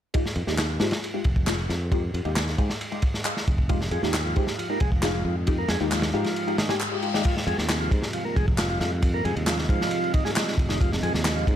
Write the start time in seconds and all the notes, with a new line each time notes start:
0.14 G#3 D#4 F4 G4 F5 G5 D#6, kick, ride
0.26 snare
0.35 F2, ride
0.47 D#2 G#3 D#4 F4 G4, snare
0.58 snare, clap, ride
0.80 G#2 G#3 D#4 F4 G4, snare, ride
0.91 snare, ride
1.04 ride
1.14 G#3 D#4 F4 G4
1.24 F1, kick, ride
1.36 kick
1.47 G#3 D#4 F4 G#4, snare, clap, ride
1.59 ride
1.69 F2, snare, ride
1.92 G#3 D#4 F4 G4, kick, ride
2.14 F2, ride
2.25 D#2 G#3 D#4 F4 G4, ride
2.36 snare, clap, ride
2.47 snare
2.58 G#2 G#3 D#4 F4 G4, kick, ride
2.70 snare
2.81 ride
2.92 G#3 D#4 F4 G4, ride
3.02 kick, ride
3.14 snare
3.25 G#3 D#4 F4 G#4, clap, ride
3.37 snare
3.47 F1, kick, ride
3.58 kick
3.69 F3 G#3 D#4 F4 G4, kick, ride
3.81 snare
3.91 F2 G#3, ride
4.03 D#2 G#3 D#4 F4 G4, snare
4.14 snare, clap, ride
4.25 F3
4.36 G#2 G#3 D#4 F4 G4, kick, ride
4.47 snare
4.58 F3, ride
4.70 G#3 A#3 D#4 F4 G4
4.80 F1 G#3, kick, ride
4.92 kick
5.03 F3 G#3 D#4 F4 G#4, snare, clap, ride
5.14 F3, ride
5.25 F2 F3
5.47 G#3 D#4 F4 G4, kick, ride
5.58 A#3
5.68 F2 G#3, snare, ride
5.81 D#2 G#3 D#4 F4 G4, ride
5.91 F3, snare, clap, ride
6.02 snare, ride
6.14 G#2 F3 G#3 D#4 F4 G4, ride
6.24 snare, ride
6.36 ride, reverse cymbal
6.47 G#3 D#4 F4 G4, ride
6.58 D#3, snare, ride
6.69 G#3 D#4 F4 G4, snare, ride
6.80 clap
6.92 G#3 D#4 F4 G4
7.02 G#3 D#4 F4 G4, ride
7.14 D#3 G#3 D#4 F4 G4, snare
7.24 F3 C4 F4 G4 G#4 D#5, kick, crash, ride
7.37 snare
7.47 F2 G#3, ride
7.58 D#2, snare
7.69 snare, clap, ride
7.81 F3
7.91 G#2, kick, ride
8.02 snare
8.13 F3, ride
8.25 A#3
8.36 F1 G#3, kick, ride
8.48 kick
8.58 F3, snare, clap, ride
8.70 F3, ride
8.80 F2 F3, snare, ride
9.02 kick, ride
9.14 A#3
9.25 F2 G#3, ride
9.36 D#2, ride
9.47 F3, snare, clap, ride
9.58 snare
9.69 G#2 F3, kick, ride
9.81 snare
9.91 ride
10.04 ride
10.14 D#3, kick, ride
10.25 G#3, snare
10.36 snare, clap, ride
10.48 snare
10.58 F1, kick, ride
10.69 D#3, snare
10.81 F3, kick, ride
10.92 snare
11.03 F2 G#3, ride
11.14 D#2, snare
11.25 snare, clap, ride
11.36 F3
11.47 G#2, kick, ride